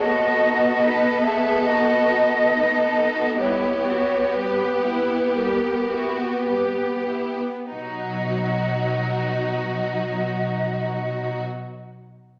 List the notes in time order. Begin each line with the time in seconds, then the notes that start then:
0.02 A3 B3 F#4 A4 D#5
0.24 B3
0.44 D#4
0.66 F#4
0.83 B3 D#4 B4
1.05 B3
1.23 A3 G#4 E5
1.46 B3
1.64 D#4 F#4 D#5
1.88 F#4
2.09 D#4
2.29 B3
2.50 A3 D#4
2.75 B3
2.96 D#4
3.16 F#4
3.40 G3 B3 E4 G4 C#5
3.64 B3
3.87 E4 F#4
4.12 B3
4.36 G3 G4 B4
4.61 B3
4.86 E4
5.10 B3
5.35 G3 G4 A#4
5.64 B3
5.91 E4 F#4
6.17 B3
6.46 G3 G4 B4
6.77 B3
7.09 E4
7.41 B3
7.71 B2 F#3 D#4 F#4 D#5